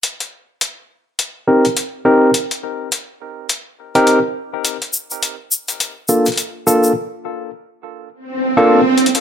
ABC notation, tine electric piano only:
X:1
M:4/4
L:1/16
Q:"Swing 16ths" 1/4=104
K:Cdor
V:1 name="Tine electric piano"
z8 z2 [CEGB] z3 [CEGB]2 | z8 z3 [CEGB]2 z3 | z8 z2 [B,DFA] z3 [B,DFA]2 | z8 z3 [B,DFA]2 z3 |]